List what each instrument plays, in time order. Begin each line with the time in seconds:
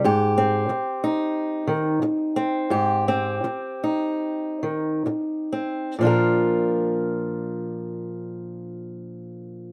0.04 steel-string acoustic guitar G#2 G4
0.38 steel-string acoustic guitar C4
0.69 muted steel-string acoustic guitar stroke
1.04 steel-string acoustic guitar D#4
1.67 steel-string acoustic guitar D#3
2.02 muted steel-string acoustic guitar stroke
2.36 steel-string acoustic guitar C4
2.70 steel-string acoustic guitar G#2 G4
3.08 steel-string acoustic guitar C4
3.44 muted steel-string acoustic guitar stroke
3.84 steel-string acoustic guitar D#4
4.63 steel-string acoustic guitar D#3
5.06 muted steel-string acoustic guitar stroke
5.53 steel-string acoustic guitar C4
5.99 steel-string acoustic guitar A#2 F3 D4
6.05 steel-string acoustic guitar F4 A#4